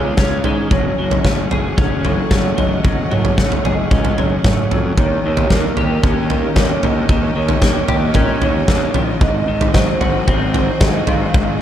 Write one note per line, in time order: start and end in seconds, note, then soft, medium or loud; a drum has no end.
0.00 0.12 C#2 medium
0.00 0.45 G#3 medium
0.00 0.18 C#4 medium
0.00 4.93 C#4 medium
0.00 0.74 G#4 medium
0.00 4.93 G#4 medium
0.00 0.67 A#4 medium
0.00 0.71 A#4 medium
0.00 0.45 C#5 medium
0.00 0.67 F5 medium
0.17 0.38 C#2 medium
0.17 1.77 C#4 medium
0.17 kick loud
0.17 snare medium
0.44 0.65 G#2 medium
0.44 0.74 G#3 medium
0.44 floor tom medium
0.71 0.92 F#1 medium
0.71 0.98 F#3 medium
0.71 4.93 A3 medium
0.71 1.25 C#5 medium
0.71 4.93 F#5 medium
0.71 kick medium
0.71 floor tom medium
0.98 1.18 F#1 medium
0.98 2.03 F#3 medium
1.11 floor tom medium
1.24 1.45 F#1 medium
1.24 2.29 A3 medium
1.24 kick medium
1.24 snare medium
1.51 1.72 F#1 medium
1.51 2.84 G#4 medium
1.51 floor tom medium
1.77 2.18 F#1 medium
1.77 3.90 C#4 medium
1.77 kick loud
1.77 floor tom medium
2.05 2.56 F#3 medium
2.05 2.31 A4 medium
2.05 floor tom medium
2.31 2.51 F#1 medium
2.31 3.37 A3 medium
2.31 2.58 C#5 medium
2.31 kick loud
2.31 snare medium
2.57 2.79 F#1 medium
2.57 2.83 F#3 medium
2.57 3.11 D#5 medium
2.57 floor tom medium
2.84 3.05 F#1 medium
2.84 3.09 F#3 medium
2.84 kick loud
2.84 floor tom medium
3.11 3.32 F#1 medium
3.11 4.17 F#3 medium
3.11 3.64 C#5 medium
3.11 mid tom medium
3.25 floor tom medium
3.38 3.58 F#1 medium
3.38 4.44 A3 medium
3.38 kick medium
3.38 snare medium
3.52 floor tom medium
3.65 3.85 F#1 medium
3.65 4.97 G#4 medium
3.65 4.18 D#5 medium
3.65 floor tom medium
3.91 4.11 C#2 medium
3.91 5.02 C#4 medium
3.91 kick loud
3.91 floor tom medium
4.05 floor tom medium
4.17 4.38 F#1 medium
4.17 4.70 F#3 medium
4.17 4.71 C#5 medium
4.17 floor tom medium
4.44 4.64 F#1 medium
4.44 4.98 A3 medium
4.44 kick loud
4.44 snare medium
4.44 mid tom medium
4.71 4.91 F2 medium
4.71 4.97 F#3 medium
4.71 floor tom medium
4.97 5.18 D#2 medium
4.97 5.24 D#3 medium
4.97 9.18 C#4 medium
4.97 9.18 G4 medium
4.97 7.07 A#4 medium
4.97 5.51 C#5 medium
4.97 11.62 D#5 medium
4.97 kick loud
4.97 floor tom medium
5.24 5.44 D#2 medium
5.24 6.30 D#3 medium
5.37 floor tom medium
5.50 5.71 D#2 medium
5.50 6.56 A#3 medium
5.50 6.04 A#4 medium
5.50 kick medium
5.50 snare medium
5.77 5.97 D#2 medium
5.77 7.10 G4 medium
5.77 floor tom medium
6.03 6.44 D#2 medium
6.03 7.36 C#4 medium
6.03 kick loud
6.03 floor tom medium
6.30 6.83 D#3 medium
6.30 6.57 A#4 medium
6.30 floor tom medium
6.56 6.77 D#2 medium
6.56 7.61 A#3 medium
6.56 6.83 C#5 medium
6.56 kick loud
6.56 snare medium
6.83 7.03 D#2 medium
6.83 7.09 D#3 medium
6.83 7.36 D#5 medium
6.83 floor tom medium
7.09 7.30 D#2 medium
7.09 7.35 D#3 medium
7.09 9.20 C#5 medium
7.09 kick loud
7.09 floor tom medium
7.36 7.56 D#2 medium
7.36 8.40 D#3 medium
7.36 7.89 C#5 medium
7.49 floor tom medium
7.62 7.82 D#2 medium
7.62 8.67 A#3 medium
7.62 kick loud
7.62 snare medium
7.88 8.09 D#2 medium
7.88 9.22 G4 medium
7.88 8.42 D#5 medium
7.88 floor tom medium
8.14 8.35 A#2 medium
8.14 9.22 C#4 medium
8.14 kick loud
8.14 floor tom medium
8.41 8.62 D#2 medium
8.41 8.94 D#3 medium
8.41 8.95 C#5 medium
8.41 floor tom medium
8.68 8.89 D#2 medium
8.68 9.22 A#3 medium
8.68 kick loud
8.68 snare medium
8.94 9.15 A#1 medium
8.94 9.22 D#3 medium
8.94 floor tom medium
9.21 9.42 G#1 medium
9.21 10.54 G#2 medium
9.21 11.62 C4 medium
9.21 11.62 F#4 medium
9.21 11.62 G#4 medium
9.21 9.75 D#5 loud
9.21 kick loud
9.21 floor tom medium
9.48 9.68 G#1 medium
9.48 10.53 D#3 medium
9.61 floor tom medium
9.74 9.95 G#1 loud
9.74 10.80 F#3 medium
9.74 10.28 C5 medium
9.74 kick loud
9.74 snare medium
10.01 10.21 G#1 medium
10.01 11.34 F#4 medium
10.01 floor tom medium
10.27 10.68 G#1 medium
10.27 11.61 C4 medium
10.27 kick medium
10.27 floor tom medium
10.54 11.07 D#3 medium
10.54 10.81 C5 medium
10.54 floor tom medium
10.81 11.01 G#1 medium
10.81 11.62 F#3 medium
10.81 11.07 D#5 medium
10.81 kick loud
10.81 snare medium
11.07 11.28 G#1 medium
11.07 11.60 D#3 medium
11.07 11.60 F5 medium
11.07 floor tom medium
11.34 11.55 G#1 medium
11.34 11.62 G#2 medium
11.34 kick loud
11.34 floor tom medium